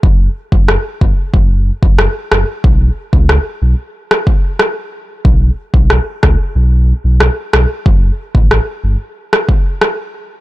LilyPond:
<<
  \new Staff \with { instrumentName = "Sub bass" } { \clef bass \time 4/4 \key fis \phrygian \tempo 4 = 92 fis,,8 r16 fis,,8 r16 g,,16 r16 fis,,8. fis,,8 r16 fis,,16 r16 | b,,8 r16 cis,8 r16 b,,16 r2 r16 | b,,8 r16 b,,8 r16 cis,16 r16 b,,8. b,,8 r16 b,,16 r16 | fis,,8 r16 a,,8 r16 g,,16 r2 r16 | }
  \new DrumStaff \with { instrumentName = "Drums" } \drummode { \time 4/4 bd8. bd16 ss8 bd8 bd8. bd16 ss8 ss8 | bd8. bd16 ss4 r16 ss16 bd8 ss4 | bd8. bd16 ss8 <bd ss>8 r4 ss8 ss8 | bd8. bd16 ss4 r16 ss16 bd8 ss4 | }
>>